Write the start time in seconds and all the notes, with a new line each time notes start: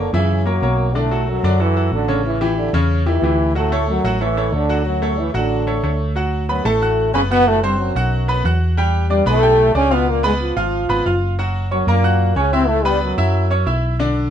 0.00 D3 D4
0.13 F#2 C#3 E3 C#4 E4 E5
0.46 F#2 F#3 A#3 A#4 C#5
0.62 B1 A#3 A#4 C#5
0.95 A2 D3 A3 D4 D5
1.11 F#3 F#4 A4
1.29 F#2 F#3
1.43 F#2 D3 D4 D5
1.60 E3 F#3 E4 F#4 A4
1.76 F#3 F#4 A4
1.92 A1 D3 D4
2.08 C#3 C#4 C#5
2.26 E3 E4
2.41 E3 E4 G4
2.58 D3 D4
2.73 E2 C#3 C#4 C#5
3.06 E3 E4 G4
3.22 D2 E3 E4 G4
3.55 A2 F#3 A3 F#4 F#5
3.72 A3 A4 C#5
3.89 F#2 F#3
4.04 A1 F#3 F#4 F#5
4.21 E3 A3 E4 A4 C#5
4.37 A3 A4 C#5
4.52 D2 D3 D4
4.69 F#3 F#4 F#5
4.86 F#2 F#3
5.02 A3 A4 C#5
5.18 E3 E4
5.34 A1 D3 F#3 D4 F#4 F#5
5.67 A3 A4 C#5
5.83 D2 A3 A4 C#5
6.16 F#3 F#4 F#5
6.49 F#2 F#3 B3 B4 B5
6.65 A1 A2 A3 A4 A5
6.82 F#4 F#5 F#6
7.14 F#1 C#3 B3 C#4 B4 B5
7.30 B2 B3 F#4 F#5 F#6
7.46 A2 A3
7.62 G2 G3 C4 C5 C6
7.79 F#2 F#3
7.95 B1 F#4 F#5 F#6
8.28 B3 B4 B5
8.44 E2 F#4 F#5 F#6
8.77 G3 G4 G5
9.10 G2 G3 D4 D5 D6
9.26 B1 A2 A3 B3 B4 B5
9.43 G4 G5 G6
9.75 C#2 C#3 C#4 D4 D5 D6
9.91 B2 B3 F4 F5 F6
10.09 A#2 A#3
10.23 G#2 G#3 B3 B4 B5
10.42 F3 F4
10.56 G#1 F4 F5 F6
10.89 G#1 B3 B4 B5
11.06 F#1 F4 F5 F6
11.39 F#3 F#4 F#5
11.71 F#2 F#3 C#4 C#5 C#6
11.87 F#2 A#2 A#3 A#4 A#5
12.04 F#4 F#5 F#6
12.36 C#2 C#3 C#4 C#5 C#6
12.52 C3 C4 E4 E5 E6
12.68 A2 A3
12.85 G2 G3 B3 B4 B5
13.01 F#2 F#3
13.18 F#2 E4 E5 E6
13.50 C#4 C#5 C#6
13.66 B1 E4 E5 E6
13.99 D3 D4 D5